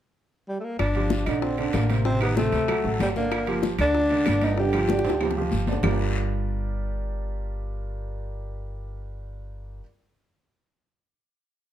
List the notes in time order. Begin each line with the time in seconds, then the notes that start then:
0.49 G3
0.60 A3 A#3
0.79 G1 D4, high bongo, high conga, high timbale, long guiro, claves
0.95 F3 F4 G4, high bongo, high conga, high timbale
1.10 high bongo, high conga, short guiro
1.26 A#1 D3 D4 D#4 D5, high bongo, high timbale, short guiro, claves
1.42 C4, high bongo, high conga, long guiro
1.58 D3 D4 D5, high bongo, high conga, high timbale
1.73 A1 A#3, high bongo, low bongo, high conga, high timbale, low timbale, short guiro, claves
1.90 C3 C4 C5, high conga, high timbale, short guiro
2.05 C3 C4 C5, high bongo, high conga, long guiro
2.21 D#3 B3 D#4 G4, high bongo, high conga, high timbale, claves
2.37 C3 A3 C4 C5, high bongo, high conga, short guiro
2.52 D2, high bongo, high conga, high timbale, short guiro
2.68 F#3 F#4 A4, high bongo, high conga, high timbale, long guiro, claves
2.84 A1 F#3 F#4 A4, high bongo, high conga
3.00 G1 G3, high bongo, low bongo, high conga, high timbale, low timbale, short guiro
3.16 D3 A#3 D4 D5, high conga, short guiro
3.32 high bongo, high conga, high timbale, long guiro, claves
3.47 F3 F4 G4, high bongo, high conga, high timbale
3.63 high bongo, high conga, short guiro
3.79 D2 D3 D4 D5, high bongo, high timbale, short guiro, claves
3.95 high bongo, high conga, long guiro
4.10 D3 D4 D5, high bongo, high conga, high timbale
4.26 G1, high bongo, low bongo, high conga, high timbale, short guiro, claves
4.41 D3 D4 D#4 D5, high conga, high timbale, short guiro
4.57 D3 D4 G4 D5, high bongo, high conga, long guiro
4.73 F3 F4 G4, high bongo, high conga, high timbale, claves
4.88 D3 D4 D5, high bongo, high conga, short guiro
4.99 high bongo
5.05 D2, high conga, high timbale, short guiro
5.10 high bongo
5.21 F3 F4 G4, high conga, low timbale, long guiro, claves
5.31 low bongo
5.36 F3 F4 G4, high conga
5.41 low bongo
5.51 G1, high conga, short guiro
5.67 D3 D4 D5, high conga, low timbale, short guiro
5.73 low bongo
5.83 G1 G3 D4 F4 G4 A#4 D5, low bongo, low conga, low timbale, long guiro, claves